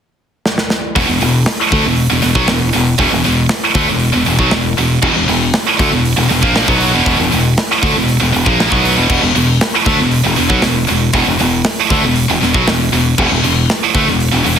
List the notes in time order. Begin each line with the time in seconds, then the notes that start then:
0.46 snare
0.58 snare
0.70 snare
0.96 E1 E2 B2, kick, open hi-hat
1.08 E1 E2 B2
1.21 E1 E2 B2, open hi-hat
1.46 snare, open hi-hat
1.72 D2 D3 A3, kick
1.85 E1 E2 B2
1.96 open hi-hat
2.10 E1 E2 B2
2.22 E1 E2 B2, snare, open hi-hat
2.35 B1 B2 F#3, kick
2.47 E1 E2 B2, snare, open hi-hat
2.73 E1 E2 B2, open hi-hat
2.98 E1 E2 B2, kick, open hi-hat
3.11 E1 E2 B2
3.24 E1 E2 B2, open hi-hat
3.49 snare, open hi-hat
3.74 D2 D3 A3, kick
3.88 E1 E2 B2
4.00 open hi-hat
4.13 E1 E2 B2
4.25 E1 E2 B2, open hi-hat
4.39 B1 B2 F#3, kick
4.51 E1 E2 B2, snare, open hi-hat
4.78 E1 E2 B2, open hi-hat
5.02 E1 E2 B2, kick, crash
5.15 E1 E2 B2
5.28 E1 E2 B2, open hi-hat
5.53 snare, open hi-hat
5.77 D2 D3 A3, kick, open hi-hat
5.90 E1 E2 B2
6.05 open hi-hat
6.16 E1 E2 B2
6.29 E1 E2 B2, snare, open hi-hat
6.42 A#1 A#2 F3 A#3, kick
6.55 snare, open hi-hat
6.67 B1 B2 F#3 B3, kick
6.80 open hi-hat
6.92 E1 E2 B2
7.06 E1 E2 B2, kick, open hi-hat
7.19 E1 E2 B2
7.32 E1 E2 B2, open hi-hat
7.57 snare, open hi-hat
7.82 D2 D3 A3, kick
7.95 E1 E2 B2
8.08 open hi-hat
8.20 E1 E2 B2
8.33 E1 E2 B2, open hi-hat
8.46 A#1 A#2 F3 A#3, kick
8.60 snare, open hi-hat
8.71 B1 B2 F#3 B3, kick
8.85 open hi-hat
8.97 E1 E2 B2
9.10 E1 E2 B2, kick, crash
9.23 E1 E2 B2
9.35 E1 E2 B2, open hi-hat
9.61 snare, open hi-hat
9.86 D2 D3 A3, kick, open hi-hat
9.98 E1 E2 B2
10.11 open hi-hat
10.24 E1 E2 B2
10.36 E1 E2 B2, open hi-hat
10.49 B1 B2 F#3, kick
10.62 E1 E2 B2, snare, open hi-hat
10.87 E1 E2 B2, open hi-hat
11.13 E1 E2 B2, kick, open hi-hat
11.28 E1 E2 B2
11.39 E1 E2 B2, open hi-hat
11.64 snare, open hi-hat
11.90 D2 D3 A3, kick, open hi-hat
12.04 E1 E2 B2
12.16 open hi-hat
12.30 E1 E2 B2
12.42 E1 E2 B2, snare, open hi-hat
12.54 B1 B2 F#3, kick
12.67 E1 E2 B2, snare, open hi-hat
12.93 E1 E2 B2, open hi-hat
13.18 E1 E2 B2, kick, crash
13.31 E1 E2 B2
13.43 E1 E2 B2, open hi-hat
13.70 snare, open hi-hat
13.94 D2 D3 A3, kick, open hi-hat
14.06 E1 E2 B2
14.20 open hi-hat
14.32 E1 E2 B2
14.44 E1 E2 B2, open hi-hat